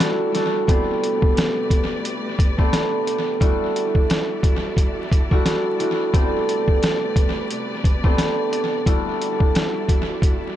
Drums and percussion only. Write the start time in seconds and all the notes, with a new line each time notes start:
0.00 snare, closed hi-hat
0.35 snare, closed hi-hat
0.68 kick, closed hi-hat
1.04 closed hi-hat
1.22 kick
1.37 snare, closed hi-hat
1.70 kick, closed hi-hat
2.05 closed hi-hat
2.39 kick, closed hi-hat
2.59 kick
2.73 snare, closed hi-hat
3.07 closed hi-hat
3.41 kick, closed hi-hat
3.76 closed hi-hat
3.95 kick
4.10 snare, closed hi-hat
4.43 kick, closed hi-hat
4.77 kick, closed hi-hat
5.12 kick, closed hi-hat
5.31 kick
5.46 snare, closed hi-hat
5.80 closed hi-hat
6.14 kick, closed hi-hat
6.49 closed hi-hat
6.68 kick
6.83 snare, closed hi-hat
7.16 kick, closed hi-hat
7.51 closed hi-hat
7.84 kick, closed hi-hat
8.04 kick
8.18 snare, closed hi-hat
8.53 closed hi-hat
8.86 kick, closed hi-hat
9.22 closed hi-hat
9.40 kick
9.55 snare, closed hi-hat
9.89 kick, closed hi-hat
10.22 kick, closed hi-hat